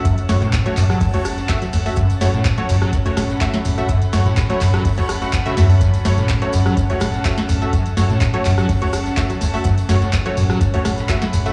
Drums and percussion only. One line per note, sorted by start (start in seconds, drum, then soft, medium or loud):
0.05 kick loud
0.05 closed hi-hat medium
0.05 tambourine soft
0.05 shaker medium
0.18 closed hi-hat medium
0.18 tambourine soft
0.29 snare medium
0.29 open hi-hat loud
0.29 tambourine medium
0.29 shaker medium
0.42 closed hi-hat soft
0.42 mid tom loud
0.42 tambourine soft
0.53 kick loud
0.53 snare loud
0.53 clap loud
0.53 closed hi-hat medium
0.53 tambourine soft
0.53 shaker medium
0.66 closed hi-hat medium
0.76 clap medium
0.76 mid tom loud
0.76 open hi-hat loud
0.76 tambourine medium
0.76 shaker medium
0.90 cross-stick medium
0.90 snare soft
0.90 tambourine soft
1.00 kick loud
1.00 closed hi-hat medium
1.00 open hi-hat medium
1.00 tambourine soft
1.14 closed hi-hat medium
1.25 cross-stick medium
1.25 snare soft
1.25 open hi-hat loud
1.25 tambourine medium
1.25 shaker medium
1.38 snare soft
1.38 closed hi-hat soft
1.38 tambourine soft
1.49 kick loud
1.49 snare loud
1.49 clap loud
1.49 closed hi-hat medium
1.49 tambourine soft
1.49 shaker medium
1.62 closed hi-hat medium
1.62 tambourine soft
1.73 snare soft
1.73 open hi-hat loud
1.73 tambourine medium
1.73 shaker medium
1.86 open hi-hat medium
1.86 tambourine soft
1.96 kick loud
1.96 closed hi-hat medium
1.96 tambourine soft
1.96 shaker medium
2.10 closed hi-hat medium
2.10 closed hi-hat soft
2.10 tambourine soft
2.21 snare medium
2.21 open hi-hat loud
2.21 tambourine medium
2.21 shaker medium
2.34 closed hi-hat soft
2.34 mid tom loud
2.34 tambourine soft
2.45 kick loud
2.45 snare loud
2.45 clap loud
2.45 closed hi-hat medium
2.45 tambourine soft
2.45 shaker medium
2.58 closed hi-hat medium
2.69 mid tom medium
2.69 open hi-hat loud
2.69 tambourine medium
2.69 shaker medium
2.82 cross-stick medium
2.82 tambourine soft
2.93 kick loud
2.93 closed hi-hat medium
2.93 tambourine soft
2.93 shaker medium
3.05 snare medium
3.05 closed hi-hat medium
3.17 cross-stick medium
3.17 snare medium
3.17 snare soft
3.17 mid tom medium
3.17 open hi-hat loud
3.17 tambourine medium
3.17 shaker medium
3.30 snare soft
3.30 closed hi-hat soft
3.30 tambourine soft
3.41 kick loud
3.41 snare loud
3.41 clap loud
3.41 closed hi-hat medium
3.41 tambourine soft
3.41 shaker medium
3.54 snare medium
3.54 closed hi-hat medium
3.54 tambourine soft
3.65 mid tom medium
3.65 open hi-hat loud
3.65 tambourine medium
3.65 shaker medium
3.78 closed hi-hat soft
3.78 tambourine soft
3.89 kick loud
3.89 closed hi-hat medium
3.89 tambourine soft
3.89 shaker medium
4.02 closed hi-hat soft
4.02 tambourine soft
4.13 snare medium
4.13 open hi-hat loud
4.13 tambourine medium
4.13 shaker medium
4.26 closed hi-hat soft
4.26 mid tom medium
4.26 tambourine soft
4.36 kick loud
4.36 snare loud
4.36 clap loud
4.36 closed hi-hat medium
4.36 tambourine soft
4.36 shaker medium
4.50 closed hi-hat soft
4.61 clap medium
4.61 mid tom medium
4.61 open hi-hat loud
4.61 tambourine medium
4.61 shaker medium
4.73 cross-stick medium
4.73 snare soft
4.73 closed hi-hat soft
4.73 tambourine soft
4.85 kick loud
4.85 closed hi-hat medium
4.85 open hi-hat medium
4.85 tambourine soft
4.98 closed hi-hat medium
5.09 cross-stick medium
5.09 snare soft
5.09 open hi-hat loud
5.09 tambourine medium
5.09 shaker medium
5.22 snare soft
5.22 closed hi-hat soft
5.22 tambourine soft
5.33 kick loud
5.33 snare loud
5.33 clap loud
5.33 closed hi-hat medium
5.33 tambourine soft
5.33 shaker loud
5.46 closed hi-hat soft
5.46 tambourine soft
5.57 snare soft
5.57 open hi-hat loud
5.57 tambourine medium
5.57 shaker medium
5.70 open hi-hat medium
5.70 tambourine soft
5.81 kick loud
5.81 closed hi-hat medium
5.81 tambourine soft
5.81 shaker medium
5.94 closed hi-hat medium
5.94 closed hi-hat soft
5.94 tambourine soft
6.05 snare medium
6.05 snare soft
6.05 open hi-hat loud
6.05 tambourine medium
6.05 shaker medium
6.18 closed hi-hat soft
6.18 mid tom medium
6.18 tambourine soft
6.29 kick loud
6.29 snare loud
6.29 clap loud
6.29 closed hi-hat medium
6.29 tambourine soft
6.29 shaker medium
6.42 closed hi-hat medium
6.53 mid tom medium
6.53 open hi-hat loud
6.53 tambourine medium
6.53 shaker medium
6.66 cross-stick medium
6.66 tambourine soft
6.77 kick loud
6.77 closed hi-hat medium
6.77 tambourine soft
6.77 shaker medium
6.90 snare medium
6.90 closed hi-hat medium
7.00 cross-stick medium
7.00 snare soft
7.00 snare medium
7.00 mid tom medium
7.00 open hi-hat loud
7.00 tambourine medium
7.00 shaker medium
7.14 snare soft
7.14 closed hi-hat soft
7.14 tambourine soft
7.25 kick loud
7.25 snare loud
7.25 clap loud
7.25 closed hi-hat medium
7.25 tambourine soft
7.25 shaker medium
7.38 snare medium
7.38 closed hi-hat medium
7.38 tambourine soft
7.49 mid tom medium
7.49 open hi-hat loud
7.49 tambourine medium
7.49 shaker medium
7.62 closed hi-hat soft
7.62 tambourine soft
7.73 kick loud
7.73 closed hi-hat medium
7.73 tambourine soft
7.73 shaker loud
7.86 closed hi-hat medium
7.86 tambourine soft
7.97 snare medium
7.97 open hi-hat loud
7.97 tambourine medium
7.97 shaker medium
8.10 closed hi-hat soft
8.10 mid tom medium
8.10 tambourine soft
8.20 kick loud
8.20 snare loud
8.20 clap loud
8.20 closed hi-hat medium
8.20 tambourine soft
8.20 shaker medium
8.34 closed hi-hat medium
8.45 clap medium
8.45 mid tom medium
8.45 open hi-hat loud
8.45 tambourine medium
8.45 shaker medium
8.58 cross-stick medium
8.58 snare medium
8.58 tambourine soft
8.69 kick loud
8.69 closed hi-hat medium
8.69 open hi-hat medium
8.69 tambourine soft
8.82 closed hi-hat medium
8.93 cross-stick medium
8.93 snare soft
8.93 open hi-hat loud
8.93 tambourine medium
8.93 shaker medium
9.06 snare soft
9.06 closed hi-hat soft
9.06 tambourine soft
9.17 kick loud
9.17 snare loud
9.17 clap loud
9.17 closed hi-hat medium
9.17 tambourine soft
9.17 shaker medium
9.30 closed hi-hat medium
9.30 tambourine soft
9.41 snare soft
9.41 open hi-hat loud
9.41 tambourine medium
9.41 shaker medium
9.54 open hi-hat medium
9.54 tambourine soft
9.64 kick loud
9.64 closed hi-hat medium
9.64 tambourine soft
9.64 shaker medium
9.78 closed hi-hat medium
9.78 closed hi-hat soft
9.78 tambourine soft
9.89 snare medium
9.89 open hi-hat loud
9.89 tambourine medium
9.89 shaker medium
10.02 closed hi-hat soft
10.02 mid tom medium
10.02 tambourine soft
10.13 kick loud
10.13 snare loud
10.13 clap loud
10.13 closed hi-hat medium
10.13 tambourine soft
10.13 shaker medium
10.26 closed hi-hat medium
10.37 mid tom medium
10.37 open hi-hat loud
10.37 tambourine medium
10.50 cross-stick medium
10.50 tambourine soft
10.61 kick loud
10.61 closed hi-hat medium
10.61 tambourine soft
10.61 shaker medium
10.74 snare medium
10.74 closed hi-hat medium
10.85 cross-stick medium
10.85 snare soft
10.85 snare medium
10.85 mid tom medium
10.85 open hi-hat loud
10.85 tambourine medium
10.85 shaker medium
10.98 snare soft
10.98 tambourine soft
11.09 kick loud
11.09 snare loud
11.09 clap loud
11.09 closed hi-hat medium
11.09 tambourine soft
11.09 shaker medium
11.22 snare medium
11.22 closed hi-hat medium
11.22 tambourine soft
11.33 mid tom medium
11.33 open hi-hat loud
11.33 tambourine medium
11.33 shaker medium
11.46 closed hi-hat soft
11.46 tambourine soft